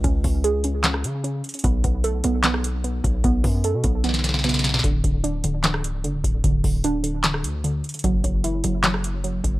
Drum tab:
HH |x---o---x---x---x---x---x---xxxx|x---x---x---x---x---x---x---x---|x---o---x---x---x-x-x---xxxxx---|x---x---x---x---x---x---x---x---|
CP |----------------x---------------|----------------x---------------|--------------------------------|----------------x---------------|
SD |----------------o-r-------------|----------------o-r-------------|----------------oooooooooooooooo|----------------o-r-------------|
BD |o---o---------------------------|o---o-----------------------o---|o---o-------o-------------------|o---o-----------------------o---|

HH |x---o---x---x---x---x---x---xxxx|x---x---x---x---x---x---x---x---|
CP |----------------x---------------|----------------x---------------|
SD |----------------o-r-------------|----------------o-r-------------|
BD |o---o---------------------------|o---o-----------------------o---|